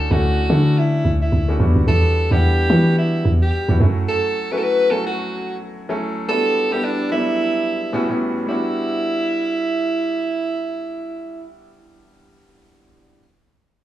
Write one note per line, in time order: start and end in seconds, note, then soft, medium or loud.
0.00 0.11 A3 medium
0.00 0.11 C#4 medium
0.00 0.11 D4 medium
0.00 0.12 E4 medium
0.00 0.12 F#4 medium
0.00 0.13 A4 loud
0.11 0.49 D2 loud
0.11 0.43 A3 medium
0.11 0.43 C#4 medium
0.11 0.43 D4 medium
0.11 0.43 E4 medium
0.11 0.80 F#4 loud
0.11 0.44 F#4 medium
0.50 1.03 D3 loud
0.50 1.28 A3 medium
0.50 1.28 C#4 medium
0.50 1.28 D4 medium
0.50 1.28 E4 medium
0.50 1.28 A4 medium
0.79 1.15 E4 medium
1.05 1.32 D2 medium
1.22 1.58 E4 medium
1.32 1.59 D2 medium
1.48 1.60 A3 medium
1.48 1.60 C#4 medium
1.48 1.59 D4 medium
1.48 1.59 E4 medium
1.48 1.60 F#4 medium
1.60 1.75 E2 loud
1.60 2.15 G3 medium
1.60 2.15 B3 medium
1.60 2.15 D4 medium
1.60 2.15 E4 medium
1.60 2.16 F#4 medium
1.76 1.87 D2 medium
1.87 2.30 E2 loud
1.87 2.33 A4 loud
2.31 2.69 E2 medium
2.31 2.63 G3 medium
2.31 2.63 B3 medium
2.31 2.64 D4 medium
2.31 2.64 E4 medium
2.31 2.98 G4 loud
2.31 2.64 F#5 medium
2.70 3.23 E3 loud
2.70 3.48 G3 medium
2.70 3.48 B3 medium
2.70 3.48 D4 medium
2.70 3.48 E4 medium
2.70 3.49 F#4 medium
2.98 3.32 E4 medium
3.25 3.52 E2 medium
3.42 3.78 G4 medium
3.69 3.79 E2 medium
3.69 3.80 G3 medium
3.69 3.80 B3 medium
3.69 3.81 D4 medium
3.69 3.80 E4 medium
3.69 3.80 F#4 medium
3.80 4.07 F#2 loud
3.80 4.35 F#3 medium
3.80 4.36 A3 medium
3.80 4.36 C#4 medium
3.80 4.36 E4 medium
3.80 4.36 F#4 medium
4.09 4.53 A4 loud
4.51 4.83 F#3 medium
4.51 4.84 A3 medium
4.51 4.84 C#4 medium
4.51 4.84 E4 medium
4.51 4.84 F#4 medium
4.51 4.59 B4 loud
4.58 4.65 A4 medium
4.63 4.92 B4 loud
4.90 5.68 F#3 medium
4.90 5.68 A3 medium
4.90 5.69 C#4 medium
4.90 5.69 E4 medium
4.90 5.69 F#4 medium
4.90 5.06 A4 loud
5.07 5.58 F#4 medium
5.89 6.21 F#3 medium
5.89 6.21 A3 medium
5.89 6.21 C#4 medium
5.89 6.21 E4 medium
5.89 6.22 A4 medium
6.28 6.62 G3 medium
6.28 6.62 B3 medium
6.28 6.62 D4 medium
6.28 6.62 E4 medium
6.28 6.62 F#4 medium
6.28 6.74 A4 loud
6.71 7.04 G3 medium
6.71 7.04 B3 medium
6.71 7.04 D4 medium
6.71 7.04 E4 medium
6.71 6.86 G4 loud
6.71 7.04 A4 medium
6.84 7.11 D4 loud
7.11 7.18 F#3 medium
7.11 7.89 B3 medium
7.11 7.89 D4 medium
7.11 7.89 E4 medium
7.11 8.17 E4 loud
7.11 7.89 A4 medium
7.17 7.92 G3 medium
7.93 8.06 A2 medium
7.93 8.06 G3 medium
7.93 8.06 B3 medium
7.93 8.06 C#4 medium
7.93 8.06 E4 medium
7.93 8.06 F#4 loud
8.09 8.41 A2 medium
8.09 8.41 G3 medium
8.09 8.41 B3 medium
8.09 8.41 C#4 medium
8.09 8.42 E4 medium
8.09 8.42 F#4 medium
8.46 12.13 G3 medium
8.46 12.14 B3 medium
8.46 12.14 D4 medium
8.46 11.45 E4 loud
8.46 12.15 E4 medium
8.51 12.16 F#4 medium